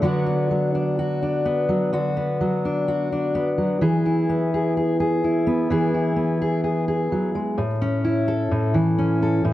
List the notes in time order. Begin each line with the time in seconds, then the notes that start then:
0.02 D3 F#3 B3 D4 F#4
0.26 B3
0.50 F#3
0.75 D4
0.99 F#4
1.22 D4
1.45 B3
1.69 F#3
1.93 D3 F#4
2.17 B3
2.41 F#3
2.65 D4
2.88 F#4
3.12 D4
3.35 B3
3.58 F#3
3.81 E3 G#4
4.06 E4
4.29 B3
4.54 G#4
4.77 G#4
5.00 G#4
5.24 E4
5.47 B3
5.71 E3 G#4
5.94 E4
6.16 B3
6.41 G#4
6.64 G#4
6.88 G#4
7.12 F#3
7.35 G#3
7.58 A2
7.81 C#4
8.04 E4
8.28 A4
8.51 A2
8.74 E3
8.98 C#4
9.22 A4
9.45 A2